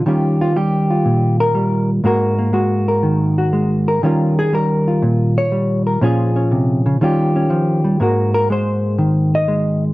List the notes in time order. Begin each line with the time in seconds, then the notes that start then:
0.06 D#3 G3 C#4 F4 G4
0.41 F4
0.56 G3 G4
0.90 F4
1.05 A#2
1.40 A#4
1.55 G3
2.04 G#2 G#3 A#3 F#4 A#4
2.39 A#3
2.53 G#3 F#4
2.88 A#4
3.03 D#3
3.38 F#4
3.53 G#3
3.88 A#4
4.03 D#3 G3 C#4 F4 A#4
4.39 G#4
4.53 G3 A#4
4.88 F4
5.02 A#2
5.38 C#5
5.52 G3
5.87 A#4
6.01 A#2 F3 C#4 F4 G#4
6.36 C#4
6.51 C3
6.86 C#3
7.01 D#3 G3 C#4 F4 G4
7.36 C#4
7.50 F3
7.84 G3
8.00 G#2 G#3 A#3 F#4 A#4
8.34 A#4
8.50 G#3 C5
8.98 D#3
9.35 D#5
9.48 G#3